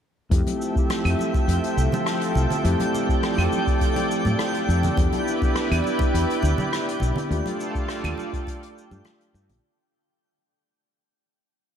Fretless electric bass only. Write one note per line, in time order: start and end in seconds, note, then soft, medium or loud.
0.31 0.41 F2 medium
1.05 1.14 F2 medium
1.48 1.58 F2 medium
1.77 1.87 C2 medium
2.35 2.45 C2 medium
2.65 2.74 F2 medium
3.38 3.47 F2 medium
4.26 4.34 A2 medium
4.69 4.87 F2 medium
4.97 5.07 E2 medium
5.71 5.80 E2 medium
6.14 6.24 E2 medium
6.43 6.53 D2 medium
7.01 7.11 B1 medium
7.31 7.40 D#2 medium
8.04 8.13 D#2 medium
8.91 9.00 G2 medium
9.34 9.51 G2 medium
9.49 9.58 A#1 medium